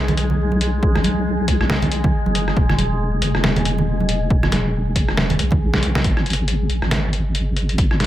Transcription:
Already playing: wobble bass B1, synth drone G#3 G#4, synth texture G#4
0.08 closed hi-hat, low conga
0.17 closed hi-hat
0.30 low conga
0.52 high conga
0.61 closed hi-hat
0.83 wobble bass B1, kick
0.95 cross-stick, low conga
1.04 closed hi-hat, high conga
1.48 wobble bass C#2, kick, closed hi-hat
1.61 wobble bass B1, cross-stick
1.70 wobble bass B1, snare, high conga
1.82 closed hi-hat, low conga
1.92 closed hi-hat
2.04 kick, low conga
2.26 wobble bass F#1, high conga
2.35 closed hi-hat
2.48 cross-stick
2.57 wobble bass E1, kick
2.69 cross-stick, low conga
2.78 closed hi-hat, high conga
3.22 wobble bass F#1, closed hi-hat
3.35 wobble bass E1, cross-stick
3.44 snare, high conga
3.56 closed hi-hat, low conga
3.65 closed hi-hat
3.78 low conga
4.00 high conga
4.09 closed hi-hat
4.30 wobble bass E1, kick
4.43 cross-stick, low conga
4.52 snare, closed hi-hat, high conga
4.96 wobble bass F#1, kick, closed hi-hat
5.08 wobble bass E1, cross-stick
5.17 snare, high conga
5.30 closed hi-hat, low conga
5.39 wobble bass B1, closed hi-hat
5.51 kick, low conga
5.73 snare, high conga
5.83 closed hi-hat
5.95 snare
6.04 wobble bass G#1, kick, closed hi-hat
6.17 cross-stick
6.26 closed hi-hat
6.30 closed hi-hat
6.33 closed hi-hat
6.48 closed hi-hat
6.69 wobble bass A#1, closed hi-hat
6.82 wobble bass G#1, cross-stick
6.91 snare, closed hi-hat
7.13 closed hi-hat
7.35 closed hi-hat
7.57 closed hi-hat
7.69 closed hi-hat
7.78 wobble bass G#1, kick, closed hi-hat
7.91 cross-stick
8.00 snare, closed hi-hat

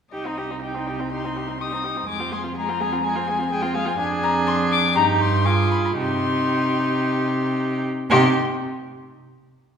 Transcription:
0.12 cello C2, viola D#4, violin G4 D#5
0.26 viola C4, violin D#4
0.38 viola D#4, violin G4
0.51 viola C4, violin D#4
0.62 viola D#4, violin G4 G5
0.75 viola C4, violin D#4
0.87 viola D#4, violin G4
0.99 viola C4, violin D#4
1.12 viola D#4, violin G4 C6
1.24 viola C4, violin D#4
1.36 viola D#4, violin G4
1.48 viola C4, violin D#4
1.60 viola D#4, violin G4 D#6
1.72 viola C4, violin D#4
1.84 viola D#4, violin G4
1.96 viola C4, violin D#4
2.07 cello F2, viola G#3, violin G#4 D6
2.20 viola C4, violin F4
2.32 viola G#3, violin G#4 C6
2.44 viola C4, violin F4
2.56 viola G#3, violin G#4 A#5
2.69 viola C4, violin F4
2.80 viola G#3, violin G#4
2.92 viola C4, violin F4
3.04 viola G#3, violin G#4 G#5
3.16 viola C4, violin F4
3.27 viola G#3, violin G#4
3.39 viola C4, violin F4
3.50 viola G#3, violin G#4 G5
3.62 viola C4, violin F4
3.74 viola G#3, violin G#4 F5
3.86 viola C4, violin F4 G#5
3.99 cello F2, viola D4, violin G#4 G#5
4.23 violin A#5
4.47 violin C6
4.72 violin D6
4.95 cello G2, viola D#4, violin G4 A#5
5.21 violin C6
5.45 viola F4, violin G#4 D6
5.71 violin B5
5.85 violin B5
5.97 cello C3, viola D#4, violin G4 C6
8.10 cello C3, viola D#4, violin G4 C6

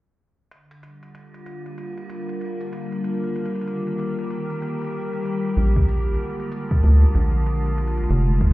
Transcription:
0.51 ambient pad D3, closed hi-hat
0.71 closed hi-hat
0.83 ambient pad G3, closed hi-hat
0.99 ambient pad F4, closed hi-hat
1.15 closed hi-hat
1.34 ambient pad A#3, closed hi-hat
1.46 closed hi-hat
1.66 ambient pad A#4, closed hi-hat
1.78 closed hi-hat
1.98 closed hi-hat
2.10 closed hi-hat
2.29 closed hi-hat
2.41 closed hi-hat
2.61 closed hi-hat
2.73 closed hi-hat
2.92 closed hi-hat
3.04 ambient pad D#3, closed hi-hat
3.24 closed hi-hat
3.36 closed hi-hat
3.46 closed hi-hat
3.55 ambient pad G4, closed hi-hat
3.61 closed hi-hat
3.67 closed hi-hat
3.87 closed hi-hat
3.99 closed hi-hat
4.19 closed hi-hat
4.31 closed hi-hat
4.50 closed hi-hat
4.62 closed hi-hat
4.82 closed hi-hat
4.85 closed hi-hat
4.88 closed hi-hat
4.91 closed hi-hat
5.13 closed hi-hat
5.25 closed hi-hat
5.45 closed hi-hat
5.57 analog synth bass A#1, ambient pad D3, closed hi-hat
5.76 kick, closed hi-hat
5.88 closed hi-hat
6.03 ambient pad G#3
6.08 closed hi-hat
6.14 ambient pad F4, closed hi-hat
6.20 closed hi-hat
6.30 closed hi-hat
6.40 closed hi-hat
6.52 closed hi-hat
6.71 kick
6.83 analog synth bass D2, closed hi-hat
7.15 analog synth bass A#1, closed hi-hat
7.46 closed hi-hat
7.66 closed hi-hat
7.78 closed hi-hat
7.88 closed hi-hat
7.98 closed hi-hat
8.04 closed hi-hat
8.09 analog synth bass F1, ambient pad D#3, closed hi-hat
8.24 ambient pad C4
8.41 kick, closed hi-hat
8.44 closed hi-hat
8.48 closed hi-hat

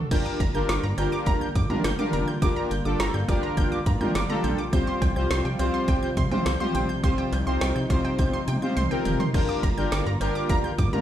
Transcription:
0.11 analog synth bass G1, analog synth pad D3 G3 A#3 F4, analog polysynth D4 F4 G4 A#4, synth arpeggio sound G6, kick, closed hi-hat, crash
0.26 synth arpeggio sound D6
0.40 analog synth bass G1, synth arpeggio sound A#5, kick, closed hi-hat
0.54 analog synth bass G1, analog polysynth D4 F4 G4 A#4, synth arpeggio sound G6
0.69 analog synth bass G1, synth arpeggio sound D6, snare, closed hi-hat
0.83 analog synth bass G2, synth arpeggio sound A#5
0.98 analog synth bass G1, analog polysynth D4 F4 G4 A#4, synth arpeggio sound G6, closed hi-hat, cowbell
1.12 synth arpeggio sound D6
1.26 analog synth bass G1, synth arpeggio sound A#5, kick, closed hi-hat
1.41 synth arpeggio sound G6
1.55 analog synth bass G2, synth arpeggio sound D6, kick, closed hi-hat
1.70 analog polysynth D4 F4 G4 A#4, synth arpeggio sound A#5, mid tom
1.84 analog synth bass G1, synth arpeggio sound G6, snare, closed hi-hat
1.99 analog polysynth D4 F4 G4 A#4, synth arpeggio sound D6, mid tom
2.13 analog synth bass F1, synth arpeggio sound A#5, closed hi-hat, mid tom
2.28 synth arpeggio sound G6
2.42 analog synth bass G1, analog polysynth D4 F4 G4 A#4, synth arpeggio sound D6, kick, closed hi-hat
2.56 synth arpeggio sound A#5
2.71 analog synth bass G1, synth arpeggio sound G6, closed hi-hat
2.85 analog synth bass G1, analog polysynth D4 F4 G4 A4, synth arpeggio sound D6
3.00 analog synth bass G1, synth arpeggio sound A#5, snare, closed hi-hat
3.14 analog synth bass G2, synth arpeggio sound G6
3.28 analog synth bass G1, analog polysynth D4 F4 G4 A#4, synth arpeggio sound D6, kick, closed hi-hat, cowbell
3.43 synth arpeggio sound A#5
3.57 analog synth bass G1, synth arpeggio sound G6, kick, closed hi-hat
3.72 synth arpeggio sound D6
3.86 analog synth bass G2, synth arpeggio sound A#5, kick, closed hi-hat
4.01 analog polysynth D4 F4 G4 A#4, synth arpeggio sound G6, mid tom
4.15 analog synth bass G1, synth arpeggio sound D6, snare, closed hi-hat
4.30 analog polysynth D4 F4 G4 A4, synth arpeggio sound A#5, mid tom
4.44 analog synth bass A#1, synth arpeggio sound G6, closed hi-hat, mid tom
4.58 synth arpeggio sound D6
4.73 analog synth bass C2, analog synth pad C3 F3, analog polysynth C4 F4 G4 C5, synth arpeggio sound G6, kick, closed hi-hat
4.87 synth arpeggio sound C6
5.02 analog synth bass C2, synth arpeggio sound G5, kick, closed hi-hat
5.16 analog synth bass C2, analog polysynth C4 F4 G4 C5, synth arpeggio sound G6
5.31 analog synth bass C2, synth arpeggio sound C6, snare, closed hi-hat
5.45 analog synth bass C3, synth arpeggio sound G5
5.59 analog synth bass C2, analog polysynth C4 F4 G4 C5, synth arpeggio sound G6, closed hi-hat, cowbell
5.74 synth arpeggio sound C6
5.88 analog synth bass C2, synth arpeggio sound G5, kick, closed hi-hat
6.03 synth arpeggio sound G6
6.17 analog synth bass C3, synth arpeggio sound C6, kick, closed hi-hat
6.31 analog polysynth C4 F4 G4 C5, synth arpeggio sound G5, mid tom
6.46 analog synth bass C2, synth arpeggio sound G6, snare, closed hi-hat
6.60 analog polysynth C4 F4 G4 C5, synth arpeggio sound C6, mid tom
6.75 analog synth bass A#1, synth arpeggio sound G5, closed hi-hat, mid tom
6.89 synth arpeggio sound G6
7.04 analog synth bass C2, analog polysynth C4 F4 G4 C5, analog synth pad D#4, synth arpeggio sound C6, kick, closed hi-hat
7.18 synth arpeggio sound G5
7.32 analog synth bass C2, synth arpeggio sound G6, closed hi-hat, cowbell
7.47 analog synth bass C2, analog polysynth C4 F4 G4 C5, synth arpeggio sound C6
7.61 analog synth bass C2, synth arpeggio sound G5, snare, closed hi-hat
7.76 analog synth bass C3, synth arpeggio sound G6
7.90 analog synth bass C2, analog polysynth C4 F4 G4 C5, synth arpeggio sound C6, kick, closed hi-hat, cowbell
8.05 synth arpeggio sound G5
8.19 analog synth bass C2, synth arpeggio sound G6, kick, closed hi-hat, high tom
8.33 synth arpeggio sound C6
8.48 analog synth bass C3, synth arpeggio sound G5, closed hi-hat, mid tom
8.62 analog polysynth C4 F4 G4 C5, synth arpeggio sound G6, mid tom
8.77 analog synth bass C2, synth arpeggio sound C6, closed hi-hat, mid tom
8.91 analog polysynth C4 F4 G4 A#4, synth arpeggio sound G5
9.05 analog synth bass F1, synth arpeggio sound G6, closed hi-hat, floor tom
9.20 synth arpeggio sound C6, floor tom
9.34 analog synth bass G1, analog synth pad D3 G3 A#3 F4, analog polysynth D4 F4 G4 A#4, synth arpeggio sound G6, kick, crash
9.49 synth arpeggio sound D6
9.63 analog synth bass G1, synth arpeggio sound A#5, kick, closed hi-hat
9.78 analog synth bass G1, analog polysynth D4 F4 G4 A#4, synth arpeggio sound G6
9.92 analog synth bass G1, synth arpeggio sound D6, snare, closed hi-hat
10.06 analog synth bass G2, synth arpeggio sound A#5
10.21 analog synth bass G1, analog polysynth D4 F4 G4 A#4, synth arpeggio sound G6, closed hi-hat, cowbell
10.35 synth arpeggio sound D6
10.49 analog synth bass G1, synth arpeggio sound A#5, kick, closed hi-hat
10.64 synth arpeggio sound G6
10.78 analog synth bass G2, synth arpeggio sound D6, kick, closed hi-hat
10.93 analog polysynth D4 F4 G4 A#4, synth arpeggio sound A#5, mid tom

